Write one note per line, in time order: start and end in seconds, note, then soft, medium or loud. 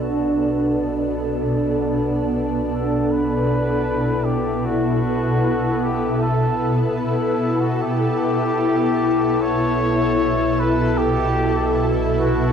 0.00 7.80 B1 medium
0.00 12.53 B2 medium
0.00 12.53 B3 medium
0.00 3.52 D4 medium
0.00 0.80 F#4 medium
0.00 12.53 A4 medium
2.73 3.13 A4 medium
3.11 4.26 B4 medium
3.29 12.53 E4 medium
4.25 4.67 G4 medium
4.65 5.84 F#4 medium
5.83 6.21 G4 medium
6.21 6.72 A4 medium
7.01 7.62 E4 medium
7.61 7.84 F#4 medium
7.82 12.53 B1 medium
7.82 9.42 G4 medium
9.41 10.61 C#5 loud
10.60 10.99 B4 medium
10.97 11.90 G4 medium
12.17 12.53 F#4 medium